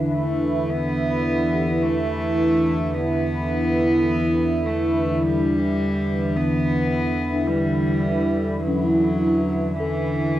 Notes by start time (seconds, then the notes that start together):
Already playing: E2 D3 E3 C#4 E4 A4 B4
0.14 A3
0.70 B3
1.53 G4
1.83 A3
2.66 A5
2.94 B3
4.66 A3
5.23 G3
6.36 B3
7.33 D4
7.47 G3
8.62 F#3
8.67 C#4
9.78 E3 A4